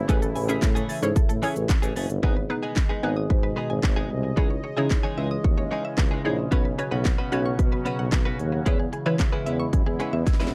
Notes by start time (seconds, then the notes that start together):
Already playing: C#3 E3 A3 E4
0.08 A1 E3 A3 C#4 E4 G#4 A4 B4, kick, closed hi-hat, shaker
0.22 A4, muted clean electric guitar stroke, closed hi-hat, shaker
0.35 A1 G#5, muted clean electric guitar stroke, open hi-hat, shaker
0.49 E3 A3 C#4 E4 G#4 A4 E5, closed hi-hat, shaker
0.62 A2 A6, kick, snare, clap, closed hi-hat, shaker
0.75 E3 A3 C#4 G#4 A6, closed hi-hat, shaker
0.89 E3 A3 C#4 G#4 A6, open hi-hat, shaker
1.03 G#2 C#4 E4 G#4 A4 C#5 C#6, closed hi-hat, shaker
1.16 A2 A4, muted clean electric guitar stroke, kick, closed hi-hat, shaker
1.29 A2 A4, muted clean electric guitar stroke, closed hi-hat, shaker
1.42 E3 A3 C#4 E4 G#4 A4 C#5 G#5, open hi-hat, shaker
1.56 A1, muted clean electric guitar stroke, closed hi-hat, shaker
1.69 A6, muted clean electric guitar stroke, kick, snare, clap, closed hi-hat, shaker
1.82 A1 E3 A3 C#4 G#4 A6, closed hi-hat, shaker
1.96 F#1 E3 A3 C#4 G#4 A6, open hi-hat, shaker
2.10 G1, muted clean electric guitar stroke, closed hi-hat, shaker
2.23 G#1 B2 D#3 G#3 B3 D#4 G#4 B4 D#5, kick
2.36 B4, muted clean electric guitar stroke
2.50 B3 D#4 G#4 B4, muted clean electric guitar stroke
2.63 G#3 B3 D#4 G#4 G#5
2.76 kick, snare, clap
2.89 G#3 B3 D#4 G#4 B4
3.03 G#1 G#3 B3 D#4 G#4 B4 G#5
3.16 D#6
3.30 G#2 B4, kick
3.43 B4, muted clean electric guitar stroke
3.56 G#3 B3 D#4 G#4 B4
3.70 G#1 G#5, muted clean electric guitar stroke
3.83 G#1 B6, muted clean electric guitar stroke, kick, snare, clap
3.96 G#3 B3 D#4 G#4
4.10 C2, muted clean electric guitar stroke
4.23 muted clean electric guitar stroke
4.36 C#2 C#3 E3 G#3 C#4 D#4 E4 G#4 C#5, kick
4.50 C#5, muted clean electric guitar stroke
4.63 C#5, muted clean electric guitar stroke
4.77 C#3 E3 G#3 D#4 E4 G#4 C#5 E5
4.90 muted clean electric guitar stroke, kick, snare, clap
5.03 E3 G#3 D#4 G#4 C#5
5.17 C#2 E3 G#3 D#4 G#4 E5
5.31 D#6
5.44 D#2 C#5, kick
5.57 C#5, muted clean electric guitar stroke
5.71 E3 G#3 D#4 G#4 C#5
5.84 E5, muted clean electric guitar stroke
5.98 C#2 C#7, muted clean electric guitar stroke, kick, snare, clap
6.11 E3 G#3 D#4 G#4
6.24 A#1 E3 G#3 D#4 E4 G#4 C#5
6.38 muted clean electric guitar stroke
6.51 B1 B2 F#3 B3 C#4 F#4 B4 C#5, kick, closed hi-hat
6.65 B4, muted clean electric guitar stroke
6.78 C#4 F#4 B4 C#5, muted clean electric guitar stroke, closed hi-hat
6.91 B1 B3 C#4 F#4 B4 F#5
7.05 kick, snare, clap, closed hi-hat
7.18 B3 C#4 F#4 B4
7.31 B1 B3 C#4 F#4 B4 C#5 F#5, closed hi-hat
7.46 C#6
7.59 B2 B4, kick, closed hi-hat
7.72 B4, muted clean electric guitar stroke
7.85 B3 C#4 F#4 B4, closed hi-hat
7.99 B1 F#5, muted clean electric guitar stroke
8.12 B1 B6, muted clean electric guitar stroke, kick, snare, clap, closed hi-hat
8.25 B3 C#4 F#4 B4
8.39 D#2, muted clean electric guitar stroke, closed hi-hat
8.52 muted clean electric guitar stroke
8.66 E2 E3 G#3 B3 C#4 E4 G#4 B4 C#5, kick, closed hi-hat
8.79 G#4, muted clean electric guitar stroke
8.93 G#4, muted clean electric guitar stroke, closed hi-hat
9.06 E3 G#3 C#4 E4 G#4 B4 C#5 E5
9.19 kick, snare, clap, closed hi-hat
9.32 G#3 C#4 E4 G#4 B4
9.46 E2 G#3 C#4 E4 B4 E5, closed hi-hat
9.60 C#6, muted clean electric guitar stroke
9.73 F#2 G#4, kick, closed hi-hat
9.86 E2 G#4, muted clean electric guitar stroke
10.00 G#3 C#4 E4 G#4 B4, closed hi-hat
10.13 E2 E5, muted clean electric guitar stroke
10.26 E2 G#6, muted clean electric guitar stroke, kick, snare, closed hi-hat
10.33 snare
10.40 E2 G#3 C#4 E4 B4, snare
10.47 snare